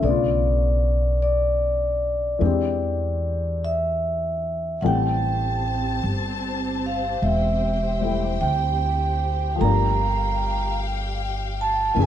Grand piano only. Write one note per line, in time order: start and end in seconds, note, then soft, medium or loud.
0.00 2.39 D3 soft
0.00 2.41 A3 soft
0.05 2.43 C#3 soft
0.05 2.42 B3 soft
0.10 2.45 F4 soft
2.39 4.81 E3 soft
2.39 4.82 G#3 soft
2.39 4.82 C4 soft
2.39 4.83 D4 soft
2.45 4.83 G4 medium
4.83 9.61 E3 soft
4.83 8.00 G3 soft
4.83 8.01 A3 soft
4.83 9.61 C4 soft
4.83 9.62 G4 soft
8.01 9.60 G3 soft
8.01 9.57 A3 soft
8.01 9.62 E4 soft
9.55 11.94 F3 soft
9.55 11.96 A3 soft
9.61 11.94 A#3 soft
9.61 11.99 D4 soft
9.67 12.00 G4 soft
11.94 12.06 D#3 soft
11.94 12.06 E3 soft
11.94 12.06 A#3 soft
11.94 12.06 C#4 soft
11.99 12.06 G#4 soft